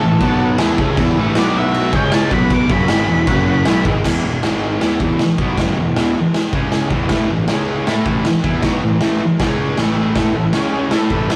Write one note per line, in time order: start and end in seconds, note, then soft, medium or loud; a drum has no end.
0.00 0.20 A1 medium
0.00 0.18 A2 medium
0.00 0.18 E3 medium
0.00 0.15 E4 medium
0.00 0.46 A4 loud
0.00 0.15 A4 medium
0.00 0.15 E5 medium
0.21 0.56 B1 medium
0.21 0.59 B2 loud
0.21 0.59 F#3 loud
0.21 0.60 B3 loud
0.21 0.34 F#4 loud
0.21 0.34 B4 loud
0.21 0.33 F#5 loud
0.21 kick loud
0.21 crash medium
0.40 0.53 F#4 medium
0.40 0.53 B4 medium
0.40 0.53 F#5 loud
0.58 0.77 E2 medium
0.58 0.78 E3 medium
0.58 0.79 B3 medium
0.58 0.72 E4 medium
0.58 0.79 E4 loud
0.58 0.72 A4 medium
0.58 0.72 E5 loud
0.58 snare loud
0.58 crash medium
0.76 0.96 C#2 medium
0.76 0.98 C#3 medium
0.76 0.90 E4 medium
0.76 0.91 A4 medium
0.76 0.90 E5 loud
0.76 kick loud
0.80 0.98 G#3 medium
0.80 0.98 C#4 loud
0.95 1.15 E1 medium
0.95 1.17 E2 loud
0.95 1.10 G#4 loud
0.95 1.09 B4 loud
0.95 1.09 E5 loud
0.95 kick loud
0.95 crash medium
1.00 1.17 B2 loud
1.00 1.18 E3 loud
1.14 1.35 A1 loud
1.14 1.36 A2 medium
1.14 1.28 G#4 medium
1.14 1.28 B4 medium
1.14 1.29 E5 loud
1.19 1.37 E3 medium
1.19 1.37 A3 loud
1.35 1.90 B1 medium
1.35 1.93 B2 loud
1.35 1.94 F#3 loud
1.35 1.94 B3 loud
1.35 1.48 F#4 medium
1.35 1.48 B4 medium
1.35 1.56 D5 loud
1.35 1.48 F#5 medium
1.35 snare loud
1.35 crash medium
1.54 1.67 F#4 medium
1.54 1.68 B4 medium
1.54 1.68 F#5 medium
1.58 1.94 E5 medium
1.73 1.87 F#4 loud
1.73 1.87 B4 medium
1.73 1.86 C#5 loud
1.73 crash medium
1.93 2.29 C#2 medium
1.93 2.33 C#3 loud
1.93 2.34 G#3 loud
1.93 2.35 C#4 loud
1.93 2.24 G#4 medium
1.93 2.24 C#5 medium
1.93 2.13 G5 loud
1.93 2.24 G#5 loud
1.93 kick loud
2.12 2.32 A5 loud
2.12 snare loud
2.12 crash medium
2.30 2.67 B1 medium
2.30 2.70 B2 medium
2.30 2.71 F#3 medium
2.30 2.62 F#4 medium
2.30 2.62 B4 medium
2.30 2.62 F#5 medium
2.30 2.52 B5 loud
2.30 kick loud
2.35 2.71 B3 loud
2.50 2.71 D6 loud
2.50 kick loud
2.50 crash medium
2.70 2.88 F#1 loud
2.70 2.89 F#2 medium
2.70 2.89 C#3 medium
2.70 2.90 F#3 medium
2.70 3.01 G#4 medium
2.70 3.01 B4 medium
2.70 3.01 E5 medium
2.70 3.83 B5 loud
2.70 kick loud
2.88 3.07 G#1 loud
2.88 3.08 G#2 loud
2.88 3.08 D#3 loud
2.88 3.08 G#3 loud
2.88 snare loud
2.88 crash medium
3.08 3.26 E1 medium
3.08 3.24 E2 medium
3.08 3.24 B2 medium
3.08 3.21 G#4 medium
3.08 3.22 B4 medium
3.08 3.22 E5 medium
3.27 3.63 F#1 medium
3.27 3.65 F#2 medium
3.27 3.66 C#3 medium
3.27 3.66 F#3 loud
3.27 3.40 F#4 loud
3.27 3.40 C#5 loud
3.27 3.40 F#5 loud
3.27 kick loud
3.27 crash medium
3.46 3.60 F#4 medium
3.46 3.59 C#5 medium
3.46 3.60 F#5 loud
3.66 3.84 B1 medium
3.66 3.85 B2 medium
3.66 3.85 F#3 loud
3.66 3.86 B3 loud
3.66 3.80 G#4 medium
3.66 3.80 B4 medium
3.66 3.80 E5 loud
3.66 snare loud
3.66 crash medium
3.85 4.03 G#1 medium
3.85 4.04 G#2 medium
3.85 4.05 D#3 loud
3.85 4.05 G#3 loud
3.85 3.98 G#4 medium
3.85 3.98 B4 medium
3.85 3.98 E5 loud
3.85 kick loud
4.04 4.22 E1 medium
4.04 4.23 E2 medium
4.04 4.24 B2 medium
4.04 4.24 E3 loud
4.04 kick medium
4.04 snare loud
4.04 crash loud
4.04 crash medium
4.24 4.41 E1 medium
4.24 4.39 E2 medium
4.24 4.40 B2 medium
4.42 4.78 G#1 medium
4.42 4.80 G#2 medium
4.42 4.81 D#3 loud
4.42 4.82 G#3 loud
4.42 snare loud
4.42 crash medium
4.81 4.99 E2 medium
4.81 5.00 E3 medium
4.81 5.01 B3 medium
4.81 5.01 E4 loud
4.81 snare loud
4.81 crash medium
5.00 5.18 E1 medium
5.00 5.19 E2 medium
5.00 5.20 B2 loud
5.00 5.20 E3 loud
5.00 kick loud
5.19 muted picked electric bass stroke soft
5.19 muted distorted electric guitar stroke medium
5.19 snare loud
5.19 crash medium
5.38 5.56 B1 medium
5.38 5.58 B2 medium
5.38 5.59 F#3 medium
5.38 5.59 B3 medium
5.38 kick loud
5.57 5.75 F#1 medium
5.57 5.76 F#2 medium
5.57 5.77 C#3 medium
5.57 5.77 F#3 loud
5.57 kick loud
5.57 snare loud
5.57 crash medium
5.77 5.95 E1 medium
5.77 5.93 E2 medium
5.77 5.93 B2 medium
5.95 6.14 E1 medium
5.95 6.15 E2 medium
5.95 6.15 B2 loud
5.95 6.16 E3 loud
5.95 snare loud
5.95 crash medium
6.34 snare loud
6.34 crash soft
6.53 6.89 C#2 medium
6.53 6.91 C#3 medium
6.53 6.91 G#3 medium
6.53 6.92 C#4 medium
6.53 kick loud
6.72 snare loud
6.72 crash medium
6.91 7.09 E1 loud
6.91 7.10 E2 medium
6.91 7.09 B2 medium
6.91 7.09 E3 medium
6.91 kick loud
7.09 7.28 A1 medium
7.09 7.28 A2 loud
7.09 7.29 E3 loud
7.09 7.30 A3 loud
7.09 kick loud
7.09 snare loud
7.09 crash medium
7.29 7.48 A1 medium
7.29 7.45 A2 medium
7.29 7.45 E3 medium
7.48 7.84 C#2 medium
7.48 7.86 C#3 loud
7.48 7.86 G#3 loud
7.48 7.87 C#4 loud
7.48 snare loud
7.48 crash medium
7.86 8.05 A2 medium
7.86 8.05 A3 medium
7.86 8.06 E4 loud
7.86 8.06 A4 loud
7.86 snare loud
7.86 crash medium
8.06 8.24 A1 medium
8.06 8.25 A2 medium
8.06 8.25 E3 loud
8.06 8.25 A3 medium
8.06 kick loud
8.25 muted picked electric bass stroke soft
8.25 muted distorted electric guitar stroke medium
8.25 snare loud
8.25 crash medium
8.44 8.62 E2 medium
8.44 8.62 E3 medium
8.44 8.62 B3 medium
8.44 8.63 E4 medium
8.44 kick loud
8.62 8.81 B1 medium
8.62 8.81 B2 medium
8.62 8.82 F#3 medium
8.62 8.82 B3 loud
8.62 kick loud
8.62 snare loud
8.62 crash medium
8.82 9.00 A1 medium
8.82 8.97 A2 medium
8.82 8.98 E3 medium
9.01 9.19 A1 medium
9.01 9.19 A2 medium
9.01 9.20 E3 loud
9.01 9.20 A3 loud
9.01 snare loud
9.01 crash medium
9.40 9.75 C#2 medium
9.40 9.77 C#3 medium
9.40 9.78 G#3 medium
9.40 9.78 C#4 loud
9.40 kick loud
9.40 snare loud
9.40 crash medium
9.77 10.13 A1 medium
9.77 10.14 A2 medium
9.77 10.16 E3 medium
9.77 10.16 A3 loud
9.77 snare loud
9.77 crash medium
10.15 10.33 A1 medium
10.15 10.34 A2 medium
10.15 10.35 E3 medium
10.15 10.35 A3 loud
10.15 10.28 E4 loud
10.15 10.28 A4 medium
10.15 10.28 E5 loud
10.15 kick loud
10.15 snare loud
10.15 crash soft
10.34 10.52 A1 medium
10.34 10.50 A2 medium
10.34 10.50 E3 medium
10.34 10.47 E4 medium
10.34 10.47 A4 medium
10.34 10.47 E5 medium
10.53 10.89 C#2 medium
10.53 10.91 C#3 loud
10.53 10.90 G#3 medium
10.53 10.66 C#4 medium
10.53 10.91 C#4 loud
10.53 10.66 G#4 medium
10.53 10.66 C#5 medium
10.53 snare loud
10.53 crash medium
10.73 10.85 C#4 medium
10.73 10.85 G#4 medium
10.73 10.85 C#5 medium
10.90 11.09 A2 medium
10.90 11.09 A3 medium
10.90 11.04 E4 loud
10.90 11.10 E4 loud
10.90 11.04 A4 medium
10.90 11.11 A4 loud
10.90 11.04 E5 loud
10.90 snare loud
10.90 crash medium
11.10 11.28 A1 medium
11.10 11.29 A2 loud
11.10 11.29 E3 medium
11.10 11.30 A3 loud
11.10 11.23 E4 medium
11.10 11.23 A4 medium
11.10 11.23 E5 medium
11.10 kick loud
11.29 11.36 E4 medium
11.29 11.36 A4 medium
11.29 11.36 E5 loud
11.29 muted picked electric bass stroke soft
11.29 muted distorted electric guitar stroke medium
11.29 snare loud
11.29 crash medium